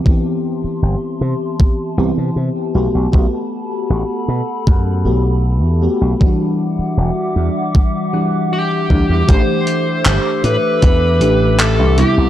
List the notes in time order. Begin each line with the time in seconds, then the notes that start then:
Already playing: E3 B3 C4 G4 E5 A5 C6
0.04 E3 B3 C4 G4, kick
0.64 muted slap bass stroke
0.82 G1
1.21 C3
1.60 kick
1.97 C2 E3 B3 C4 G4
2.18 C3
2.36 C3
2.74 B1 A3 B3 F#4 G4 A4 F#5 B5
2.95 B1
3.12 B1 A3 B3 F#4 G4, kick
3.90 A1
4.28 B2
4.67 F#2, kick
5.05 B1 A3 B3 F#4 G4
5.63 E2
5.82 A3 B3 F#4 G4
6.01 B1
6.20 E3 G3 D4 F#4 E5 F#5 D6, kick
6.79 muted slap bass stroke
6.97 E1
7.36 E2
7.75 kick
8.13 E3 G3 D4 F#5
8.53 G4
8.89 D2 E3 G3 D4 F#5, kick
9.10 E2
9.27 A1 E3 A3 D4 G4 A4 C5 E5 D6, kick, closed hi-hat
9.67 closed hi-hat
10.05 G1, clap, closed hi-hat
10.44 A2 B4, closed hi-hat
10.82 E2, kick, closed hi-hat
11.20 A1 E3 A3 D4 G4, closed hi-hat
11.59 A4, clap, closed hi-hat
11.79 C2
11.97 C3 G3 B3 E4 G4 C6, closed hi-hat
12.18 C2